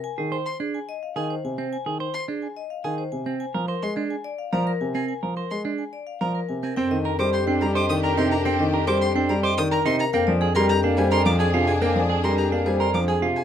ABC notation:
X:1
M:3/4
L:1/16
Q:1/4=107
K:Fdor
V:1 name="Violin"
z3 c' z4 a z3 | z3 c' z4 a z3 | z3 c' z4 b z2 a | z3 c' z4 b z2 a |
g z2 d' c' z b d' e' b c' b | g z2 d' c' z b d' e' b c' b | g z2 c' b z a c' d' a z a | g z2 c' b z a c' d' a z a |]
V:2 name="Vibraphone"
a z c z A a e f e c a c | a z c z A a e f e c a c | a z B z A a d f d B a B | a z B z A a d f d B a B |
g e B c G g d e d B g B | g e B c G g d e d B g B | f d A B G f c d c A f A | f d A B G f c d c A f A |]
V:3 name="Clean electric guitar"
z A c z D z3 A z2 C | z A c z D z3 A z2 C | z B c z D z3 B z2 C | z B c z D z3 B z2 C |
C z B c z D z c z B E z | C z B c z D z c z B E z | C z A B z D z B z A F z | C z A B z D z B z A F z |]
V:4 name="String section"
z12 | z12 | z12 | z12 |
[DG]12- | [DG]8- [DG]3 z | [DA]12- | [DA]8- [DA]3 z |]
V:5 name="Grand piano" clef=bass
z E, z6 E, z C, z | z E, z6 E, z C, z | z F, z A, z4 F, z C, z | z F, z A, z4 F, z C, z |
C E, z G, z C G, z E, z C, z | C E, z G, z C G, z E, z C, z | B, F, z G, z B, G, z F, z C, z | B, F, z G, z B, G, z F, z C, z |]
V:6 name="Bass clarinet" clef=bass
z12 | z12 | z12 | z12 |
F,,12- | F,,12 | F,,12- | F,,12 |]